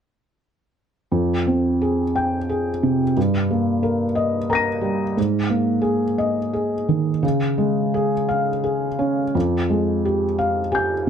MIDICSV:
0, 0, Header, 1, 2, 480
1, 0, Start_track
1, 0, Key_signature, -4, "minor"
1, 0, Tempo, 692042
1, 773, Time_signature, 6, 3, 24, 8
1, 1726, Tempo, 671141
1, 4126, Tempo, 696864
1, 7743, End_track
2, 0, Start_track
2, 0, Title_t, "Felt piano"
2, 0, Program_c, 0, 0
2, 774, Note_on_c, 0, 41, 35
2, 916, Control_c, 0, 64, 127
2, 1016, Note_on_c, 0, 60, 27
2, 1259, Note_on_c, 0, 68, 31
2, 1396, Note_off_c, 0, 60, 0
2, 1495, Note_on_c, 0, 79, 40
2, 1635, Note_off_c, 0, 68, 0
2, 1730, Note_on_c, 0, 68, 31
2, 1875, Note_off_c, 0, 79, 0
2, 1971, Note_on_c, 0, 48, 29
2, 2116, Note_off_c, 0, 68, 0
2, 2182, Note_off_c, 0, 41, 0
2, 2211, Note_off_c, 0, 48, 0
2, 2215, Note_on_c, 0, 43, 37
2, 2222, Control_c, 0, 64, 0
2, 2323, Control_c, 0, 64, 127
2, 2454, Note_on_c, 0, 58, 28
2, 2684, Note_on_c, 0, 70, 31
2, 2832, Note_off_c, 0, 58, 0
2, 2917, Note_on_c, 0, 75, 42
2, 3062, Note_off_c, 0, 70, 0
2, 3162, Note_on_c, 0, 70, 30
2, 3163, Note_on_c, 0, 82, 28
2, 3185, Note_on_c, 0, 94, 26
2, 3201, Note_on_c, 0, 99, 25
2, 3299, Note_off_c, 0, 75, 0
2, 3389, Note_on_c, 0, 55, 30
2, 3546, Note_off_c, 0, 70, 0
2, 3615, Note_off_c, 0, 82, 0
2, 3616, Note_off_c, 0, 43, 0
2, 3626, Note_off_c, 0, 94, 0
2, 3634, Note_off_c, 0, 99, 0
2, 3637, Note_off_c, 0, 55, 0
2, 3646, Note_on_c, 0, 44, 41
2, 3657, Control_c, 0, 64, 0
2, 3789, Control_c, 0, 64, 127
2, 3877, Note_on_c, 0, 58, 32
2, 4106, Note_on_c, 0, 68, 36
2, 4264, Note_off_c, 0, 58, 0
2, 4360, Note_on_c, 0, 75, 44
2, 4495, Note_off_c, 0, 68, 0
2, 4601, Note_on_c, 0, 68, 34
2, 4745, Note_off_c, 0, 75, 0
2, 4844, Note_on_c, 0, 51, 35
2, 4984, Note_off_c, 0, 68, 0
2, 5054, Note_off_c, 0, 44, 0
2, 5078, Note_on_c, 0, 49, 45
2, 5080, Note_off_c, 0, 51, 0
2, 5092, Control_c, 0, 64, 0
2, 5187, Control_c, 0, 64, 127
2, 5321, Note_on_c, 0, 56, 34
2, 5571, Note_on_c, 0, 68, 42
2, 5704, Note_off_c, 0, 56, 0
2, 5808, Note_on_c, 0, 77, 44
2, 5952, Note_off_c, 0, 68, 0
2, 6050, Note_on_c, 0, 68, 38
2, 6198, Note_off_c, 0, 77, 0
2, 6291, Note_on_c, 0, 61, 34
2, 6447, Note_off_c, 0, 68, 0
2, 6513, Note_off_c, 0, 49, 0
2, 6539, Note_off_c, 0, 61, 0
2, 6540, Note_on_c, 0, 41, 40
2, 6552, Control_c, 0, 64, 0
2, 6683, Control_c, 0, 64, 127
2, 6781, Note_on_c, 0, 56, 31
2, 7026, Note_on_c, 0, 67, 36
2, 7160, Note_off_c, 0, 56, 0
2, 7254, Note_on_c, 0, 77, 41
2, 7401, Note_off_c, 0, 67, 0
2, 7483, Note_on_c, 0, 80, 28
2, 7484, Note_on_c, 0, 67, 33
2, 7504, Note_on_c, 0, 91, 26
2, 7634, Note_off_c, 0, 77, 0
2, 7743, Note_off_c, 0, 41, 0
2, 7743, Note_off_c, 0, 67, 0
2, 7743, Note_off_c, 0, 80, 0
2, 7743, Note_off_c, 0, 91, 0
2, 7743, End_track
0, 0, End_of_file